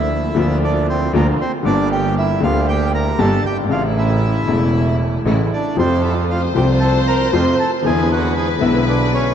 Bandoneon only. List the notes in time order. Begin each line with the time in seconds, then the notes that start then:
Already playing: E4 E5
0.64 D4 D5
0.89 C4 C5
1.16 A#3 A#4
1.41 C4 C5
1.66 D4 D5
1.92 G4 G5
2.18 E4 E5
2.43 F4 F5
2.68 G4 G5
2.95 A#4 A#5
3.19 A4 A5
3.46 G4 G5
3.71 F4 F5
3.98 E4 E5
5.53 D4 D5
5.79 C4 C5
6.04 E4 E5
6.30 F4 F5
6.56 G4 G5
6.80 A4 A5
7.08 A#4 A#5
7.33 C5 C6
7.60 A4 A5
7.86 G#4 G#5
8.12 F#4 F#5
8.38 G#4 G#5
8.61 E4 E5
8.89 D4 D5
9.14 C#4 C#5